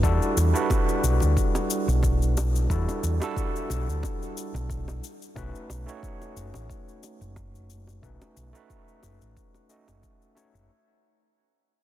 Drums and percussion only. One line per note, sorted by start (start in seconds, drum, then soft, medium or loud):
0.03 kick medium
0.03 cabasa soft
0.22 cabasa soft
0.37 high bongo soft
0.37 cabasa medium
0.56 cabasa soft
0.70 kick loud
0.70 high bongo medium
0.70 cabasa soft
0.89 cabasa soft
1.04 cabasa medium
1.20 high bongo soft
1.20 cabasa soft
1.37 kick medium
1.37 cabasa soft
1.55 high bongo medium
1.55 cabasa soft
1.70 cabasa medium
1.89 cabasa soft
2.03 kick medium
2.03 high bongo soft
2.03 cabasa soft
2.22 cabasa soft
2.37 high bongo medium
2.37 cabasa medium
2.56 cabasa soft
2.70 kick medium
2.70 cabasa soft
2.89 high bongo soft
2.89 cabasa soft
3.04 cabasa medium
3.22 high bongo medium
3.22 cabasa soft
3.36 kick medium
3.36 cabasa soft
3.56 cabasa soft
3.70 high bongo soft
3.70 cabasa medium
3.90 cabasa soft
4.03 kick medium
4.03 high bongo medium
4.03 cabasa soft
4.22 cabasa soft
4.37 cabasa medium
4.55 high bongo soft
4.55 cabasa soft
4.70 kick medium
4.70 cabasa soft
4.88 high bongo medium
4.88 cabasa soft
5.04 cabasa medium
5.22 cabasa soft
5.36 kick medium
5.36 high bongo soft
5.36 cabasa soft
5.55 cabasa soft
5.70 high bongo medium
5.70 cabasa medium
5.89 cabasa soft
6.03 kick loud
6.03 cabasa soft
6.22 high bongo soft
6.22 cabasa soft
6.37 cabasa medium
6.54 high bongo medium
6.54 cabasa soft
6.70 kick medium
6.70 cabasa soft
6.89 cabasa soft
7.03 high bongo soft
7.03 cabasa medium
7.22 cabasa soft
7.36 kick medium
7.36 high bongo medium
7.36 cabasa soft
7.55 cabasa soft
7.70 cabasa medium
7.87 high bongo soft
7.87 cabasa soft
8.03 kick medium
8.03 cabasa soft
8.22 high bongo medium
8.22 cabasa soft
8.37 cabasa medium
8.55 cabasa soft
8.70 kick medium
8.70 high bongo soft
8.70 cabasa soft
8.88 cabasa soft
9.03 high bongo medium
9.03 cabasa medium
9.22 cabasa soft
9.37 kick medium
9.37 cabasa soft
9.54 high bongo soft
9.54 cabasa soft
9.70 cabasa medium
9.88 high bongo medium
9.88 cabasa soft
10.03 kick medium
10.03 cabasa soft
10.22 cabasa soft
10.37 high bongo soft
10.37 cabasa medium
10.55 cabasa soft